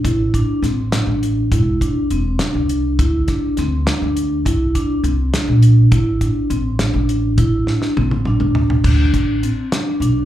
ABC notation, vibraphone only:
X:1
M:5/8
L:1/8
Q:1/4=102
K:Am
V:1 name="Vibraphone"
E D C D2 | E D C D2 | E D C D2 | E D C D2 |
E D C D2 | E D C D2 | D2 C D D |]